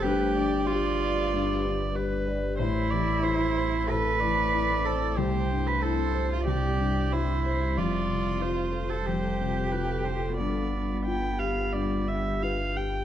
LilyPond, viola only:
\new Staff \with { instrumentName = "Viola" } { \time 4/4 \key g \mixolydian \tempo 4 = 92 b'8 d''8 d''2 b'4 | c''8 d''8 c''4 a'8 d''4. | c''4 c''4 d''4 c''8 c''8 | d''4 c''2 b'8 c''8 |
d''4 g''8 f''8 d''8 e''8 f''8 g''8 | }